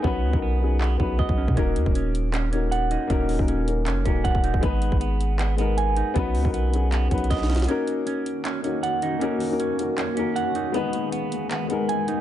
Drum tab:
HH |------------------------------------------------------------------------------------------------|x-----------x-----------x-----------x-----------x-----------x-----------x-----------x-----------|x-----------o-----------x-----------x-----------x-----------x-----------x-----------x-----------|x-----------x-----------x-----------x-----------x-----------x-----------x-----------x-----------|
CP |------------------------------------------------x-----------------------------------------------|------------------------------------------------x-----------------------------------------------|------------------------------------------------x-----------------------------------------------|------------------------------------------------x-----------------------------------------------|
SD |------------------------------------------------------------------------------------------------|------------------------------------------------------------------------------------------------|------------------------------------------------------------------------------------------------|------------------------------------------------------------------------------------------------|
BD |o-----------------o-----------------------------------------o-----------o-----o-----------o-----|o-----------------o-----------------------------------------------------------------------------|o-----------------o-----------------------------------------o-----------o-----o-----------o-----|o-----------------o-----------------------------------------------------------------------------|

HH |x-----------o-----------x-----------x-----------x-----------x---x---x---x-----------x--x--x--x--|x-----------x-----------x-----------x-----------x-----------x-----------x-----------x-----------|x-----------o-----------x-----------x-----------x-----------x-----------x-----------x-----------|x-----------x-----------x-----------x-----------x-----------x-----------x-----------x-----------|
CP |------------------------------------------------x-----------------------------------------------|------------------------------------------------x-----------------------------------------------|------------------------------------------------x-----------------------------------------------|------------------------------------------------x-----------------------------------------------|
SD |------------------------------------------------------------------------o---o---o---o---o---o---|------------------------------------------------------------------------------------------------|------------------------------------------------------------------------------------------------|------------------------------------------------------------------------------------------------|
BD |o-----------------o-----------------------------------------o-----------o-----------------------|------------------------------------------------------------------------------------------------|------------------------------------------------------------------------------------------------|------------------------------------------------------------------------------------------------|